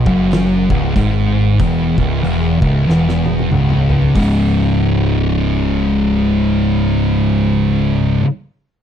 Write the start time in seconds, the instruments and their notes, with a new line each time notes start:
0.06 picked electric bass F#1, distorted electric guitar F#2, kick
0.31 snare, open hi-hat
0.70 picked electric bass C#1, distorted electric guitar C#2, kick
0.96 picked electric bass G#1, distorted electric guitar G#2, kick, open hi-hat
1.59 picked electric bass E1, distorted electric guitar E2, kick, open hi-hat
1.98 picked electric bass C#1, distorted electric guitar C#2, kick
2.23 picked electric bass E1, distorted electric guitar E2, open hi-hat
2.61 picked electric bass C#1, distorted electric guitar C#2, kick
2.87 picked electric bass E1, distorted electric guitar E2, snare
3.09 snare
3.26 high tom
3.39 high tom
3.51 picked electric bass C#1, distorted electric guitar C#2, mid tom
3.70 mid tom
3.89 floor tom
4.02 floor tom
4.15 picked electric bass C#1, distorted electric guitar C#2 G#2 C#3, kick, open hi-hat